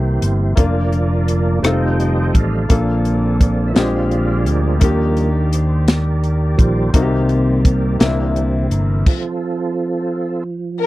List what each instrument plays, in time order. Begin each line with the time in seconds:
Already playing: fingered electric bass C2, grand piano C3 C4 E4 G4 A#4, pipe organ E3 G3 A#3 C4, tonewheel organ E4 G4 C5
0.22 fingered electric bass G1, closed hi-hat
0.56 pipe organ D3 F3 D4, tonewheel organ F3 A#3 D4 F4 A#4 D5, grand piano A#3 D4 F4 A#4, kick, closed hi-hat
0.93 closed hi-hat
1.28 closed hi-hat
1.62 fingered electric bass F1, pipe organ D#3 C4 A4, tonewheel organ G3 A3 D#4 C5 D#5 G5, grand piano C4 D#4 F4 A4, cross-stick, closed hi-hat
2.00 closed hi-hat
2.34 fingered electric bass A1, tonewheel organ A4 D5 F5, kick, closed hi-hat
2.69 fingered electric bass A#1, grand piano A#2 A#3 D4 F4 A4, pipe organ D3 A#3, tonewheel organ A#3 C4 D4, kick, closed hi-hat
3.05 closed hi-hat
3.41 tonewheel organ D5, kick, closed hi-hat
3.68 tonewheel organ E5
3.73 fingered electric bass A#1, grand piano A#2 G#3 C4, tonewheel organ F3 G#3 C4 D4 F4 D5 F5, pipe organ G#3 C4 G4, snare, closed hi-hat
3.78 grand piano D4 G4
4.11 closed hi-hat
4.46 fingered electric bass D2, tonewheel organ G4 A#4 D5, closed hi-hat
4.80 fingered electric bass D#2, grand piano D#3 A#3 D4 D#4, pipe organ D#3 A#3 D5, tonewheel organ F3 G3 A#3, kick, closed hi-hat
4.84 grand piano G4
5.17 closed hi-hat
5.53 tonewheel organ C5, closed hi-hat
5.88 tonewheel organ G4 A#4 D5, snare, closed hi-hat
6.24 closed hi-hat
6.57 fingered electric bass A#1, tonewheel organ D#3 F3 G3 G4 C5 D5, kick, closed hi-hat
6.93 fingered electric bass C2, tonewheel organ C3 A#3 D5, grand piano C3 A#3 C4 D#4 F#4, pipe organ D#3 G3 C4, kick, closed hi-hat
7.02 grand piano G4
7.29 closed hi-hat
7.65 tonewheel organ C4 G4 A#4, kick, closed hi-hat
7.98 fingered electric bass C2, grand piano C3 A#3 C4 D4 E4, pipe organ D3 E3 A#3, tonewheel organ E3 A#3, snare, closed hi-hat
8.02 tonewheel organ D4
8.36 closed hi-hat
8.70 fingered electric bass G1, tonewheel organ A#4, closed hi-hat
9.06 tonewheel organ F3 C4 F4 A4, kick, crash
10.83 string section A#4